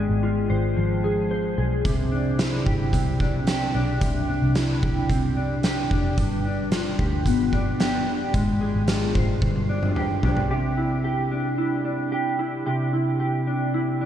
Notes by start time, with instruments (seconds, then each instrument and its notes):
Already playing: clean electric guitar G#3 F4 G#4
0.09 picked electric bass G#1
0.23 clean electric guitar F4
0.50 picked electric bass G#1, clean electric guitar C5
0.77 picked electric bass G#1, clean electric guitar F3
1.04 clean electric guitar G#4
1.31 clean electric guitar C5
1.58 picked electric bass B1, clean electric guitar G#4
1.85 picked electric bass C2, clean electric guitar C3, kick, closed hi-hat
2.12 clean electric guitar D4
2.39 clean electric guitar E4, snare, closed hi-hat
2.66 picked electric bass G1, clean electric guitar G4, kick
2.93 picked electric bass C2, clean electric guitar C4, kick, closed hi-hat
3.20 clean electric guitar D4, kick
3.47 clean electric guitar G4, snare, closed hi-hat
3.74 picked electric bass B1, clean electric guitar D4
4.01 picked electric bass C2, clean electric guitar C3, kick, closed hi-hat
4.28 clean electric guitar D4
4.42 picked electric bass C2
4.55 clean electric guitar E4, snare, closed hi-hat
4.83 picked electric bass C2, clean electric guitar G4, kick
5.10 picked electric bass C2, clean electric guitar C4, kick, closed hi-hat
5.37 clean electric guitar D4
5.63 clean electric guitar G4, snare, closed hi-hat
5.91 picked electric bass F1, clean electric guitar D4, kick
6.18 picked electric bass G1, clean electric guitar G2, kick, closed hi-hat
6.45 clean electric guitar D4
6.72 clean electric guitar F4, snare, closed hi-hat
6.99 picked electric bass D2, clean electric guitar G4, kick
7.26 picked electric bass G1, clean electric guitar B3, kick, closed hi-hat
7.53 clean electric guitar D4, kick
7.80 clean electric guitar G4, snare, closed hi-hat
8.07 picked electric bass F1, clean electric guitar D4
8.34 picked electric bass G#1, clean electric guitar G#3, kick, closed hi-hat
8.61 clean electric guitar G#4
8.74 picked electric bass G#1
8.88 clean electric guitar F4, snare, closed hi-hat
9.15 picked electric bass G#1, clean electric guitar C5, kick
9.42 picked electric bass G1, clean electric guitar G2, kick, high tom
9.56 high tom
9.69 clean electric guitar D4
9.83 mid tom
9.96 clean electric guitar G4, mid tom
10.23 picked electric bass B1, clean electric guitar D4, floor tom
10.37 floor tom
10.50 clean electric guitar C3 G4
10.77 clean electric guitar E4
11.04 clean electric guitar G4
11.31 clean electric guitar D4
11.58 clean electric guitar E4
11.85 clean electric guitar D4
12.12 clean electric guitar G4
12.39 clean electric guitar E4
12.66 clean electric guitar C3 G4
12.93 clean electric guitar E4
13.20 clean electric guitar G4
13.47 clean electric guitar D4
13.74 clean electric guitar E4
14.01 clean electric guitar D4